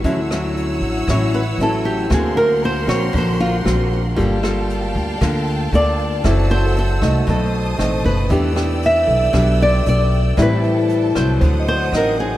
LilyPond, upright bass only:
\new Staff \with { instrumentName = "Upright bass" } { \clef bass \time 4/4 \key e \dorian \tempo 4 = 116 d,4. a,,8 a,,4 a,,4 | d,4. ais,,8 ais,,4 ais,,4 | g,,4. d,8 d,4 d,4 | fis,,4. c,8 b,,4 a,,8 fis,,8 |
e,4. b,,8 b,,4 b,,4 | a,,4. c,8 d,4 a,,4 | }